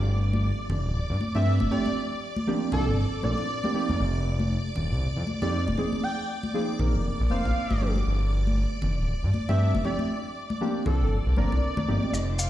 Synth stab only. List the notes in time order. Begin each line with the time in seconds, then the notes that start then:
Already playing: F3 A3 C4 D4 G4
1.35 F3 A3 C4 D4 G4
1.71 F3 A3 C4 D4 G4
2.47 F3 A#3 C4 D4 G4
2.72 F3 A#3 C4 D4 A4
3.23 F3 A#3 C4 D4 A4
3.63 F3 A#3 C4 D4 G4
3.74 F3 A#3 C4 D#4 G4
5.41 F3 A#3 C4 D#4 G4
5.77 F3 A#3 C4 D#4 G#4
6.54 F3 A#3 C4 D#4 G#4
6.79 F3 A#3 C4 D#4 A#4
7.30 F3 A#3 C4 D#4 C5
7.81 F3 A3 C4 D4 G4
9.48 F3 A3 C4 D4 G4
9.84 F3 A3 C4 D4 G4
10.61 F3 A#3 C4 D4 G4
10.86 F3 A#3 C4 D4 A4
11.37 F3 A#3 C4 D4 A#4
11.87 F3 A#3 C4 D#4 G4